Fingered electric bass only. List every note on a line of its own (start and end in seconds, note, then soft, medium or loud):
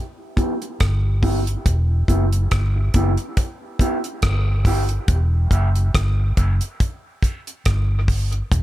0.81 1.54 G1 medium
1.66 2.03 E1 medium
2.08 2.46 F#1 medium
2.52 2.89 G1 medium
2.95 3.15 F#1 medium
4.23 4.97 G1 medium
5.09 5.46 E1 loud
5.51 5.88 F#1 medium
5.95 6.32 G1 medium
6.38 6.58 F#1 medium
7.66 8.40 G1 medium
8.52 8.63 E1 medium